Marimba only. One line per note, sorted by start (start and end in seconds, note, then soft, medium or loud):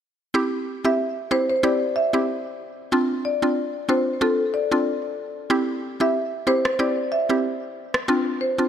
0.85 0.96 E5 medium
1.31 1.45 C5 medium
1.50 1.60 C5 medium
1.64 1.77 D5 medium
1.96 2.10 E5 medium
3.25 3.39 D5 medium
3.89 4.03 C5 medium
4.21 4.35 A4 medium
4.54 4.68 D5 medium
6.01 6.12 E5 medium
6.47 6.61 C5 medium
6.65 6.76 C5 medium
6.79 6.93 D5 medium
7.12 7.26 E5 medium
8.41 8.55 C5 medium